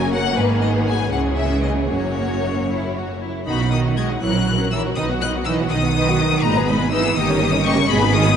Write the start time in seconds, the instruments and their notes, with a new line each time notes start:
Already playing: double bass section F#1, cello section F#2, viola section F#3 A#3, violin section C#4 A#4 G#5
0.13 violin section F#5
0.36 double bass section G#1, cello section G#2, viola section D#3, violin section B3 G#4 B4
0.61 violin section D#5
0.86 violin section G#5
1.11 double bass section C#2, cello section C#3, viola section E3 G#3, violin section C#4 G#4 F#5
1.37 violin section E5
1.62 violin section D#5
1.89 double bass section F#1, cello section F#2, viola section F#3 A#3, violin section C#4 F#4 C#5
2.69 violin section E4
2.95 violin section F#4
3.22 violin section E4
3.47 double bass section B1, cello section B2, viola section D#3 D#4, violin section F#4 D#5 B5
3.59 viola section F#3 F#4, violin section D#4 F#5
3.71 viola section D#3 D#4, cello section D#3, violin section F#4 D#5 D#6
3.85 viola section F#3 F#4, violin section D#4 F#5
3.97 viola section D#3 D#4, cello section G#3, violin section F#4 D#5 G#6
4.10 viola section F#3 F#4, violin section D#4 F#5
4.22 double bass section A#1, viola section E3 E4, cello section F#3, violin section A#4 C#5 F#6
4.35 viola section F#3 C#4, violin section F#4 A#4
4.48 viola section E3 E4, violin section A#4 C#5
4.59 viola section F#3 C#4, violin section F#4 A#4
4.72 cello section E3, viola section E3 E4, violin section A#4 C#5 E6
4.84 viola section F#3 C#4, violin section F#4 A#4
4.96 double bass section B1, cello section D#3, viola section D#3 D#4, violin section B4 D#5 D#6
5.09 viola section F#3 B3, violin section F#4 F#5
5.21 viola section D#3 D#4, cello section F#3, violin section B4 D#5 F#6
5.35 viola section F#3 B3, violin section F#4 F#5
5.45 viola section D#3 D#4, cello section E3, violin section B4 D#5 E6
5.59 viola section F#3 B3, violin section F#4 F#5
5.70 double bass section B1, cello section D#3, viola section D#3 D#4, violin section B4 D#5 D#6
5.84 viola section F#3 B3, violin section F#4 F#5
5.95 viola section D#3 D#4, violin section B4 D#5
6.08 viola section F#3 B3, violin section F#4 F#5
6.20 viola section D#3 D#4, violin section B4 D#5
6.32 viola section F#3 B3, violin section F#4 F#5
6.41 double bass section G#1, cello section A#2, viola section G#3 D#4, violin section B4 D#5 A#5
6.55 viola section B3, violin section G#4 B4
6.67 cello section B2, viola section G#3 D#4, violin section B4 D#5 B5
6.79 viola section B3, violin section G#4 B4
6.91 cello section E3, viola section G#3 D#4, violin section B4 D#5 E6
7.03 viola section B3, violin section G#4 B4
7.15 double bass section G1, cello section D#3, viola section A#3 D#4, violin section G4 D#5 D#6
7.28 viola section C#4 G4, violin section A#4 C#5
7.40 viola section A#3 D#4, violin section G4 D#5
7.52 viola section C#4 G4, violin section A#4 C#5
7.64 cello section C#3, viola section A#3 D#4, violin section G4 D#5 C#6
7.76 viola section C#4 G4, violin section A#4 C#5
7.87 double bass section G#1, cello section B2, viola section G#3 G#4, violin section G#4 D#5 B5
7.99 viola section B3 D#4, violin section B4 G#5
8.12 cello section D#3, viola section G#3 G#4, violin section G#4 D#5 D#6
8.23 viola section B3 D#4, violin section B4 G#5